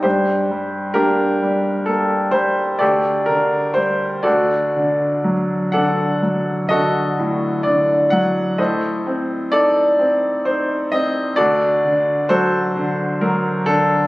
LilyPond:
<<
  \new Staff \with { instrumentName = "Grand piano" } { \time 6/8 \key d \phrygian \tempo 4. = 43 << { c''4 bes'4 a'8 c''8 | d''8 bes'8 c''8 d''4 r8 | fis''4 ees''4 d''8 fis''8 | ees''4 d''4 c''8 ees''8 |
d''4 c''4 bes'8 a'8 | } \\ { g'4 <d' g'>4. r8 | <g' a'>4. <fis' a'>4. | <a' d''>4 <fis' a'>4. r8 | <a' c''>4 a'4. r8 |
<fis' a'>4 <fis' a'>4. r8 | } >> }
  \new Staff \with { instrumentName = "Grand piano" } { \clef bass \time 6/8 \key d \phrygian g,8 g8 bes8 g8 bes8 g8 | d,8 d8 g8 d,8 d8 fis8 | d8 fis8 d8 a,8 d8 fis8 | a,8 c'8 ees'8 c'8 ees'8 c'8 |
d,8 d8 fis8 d8 fis8 d8 | }
>>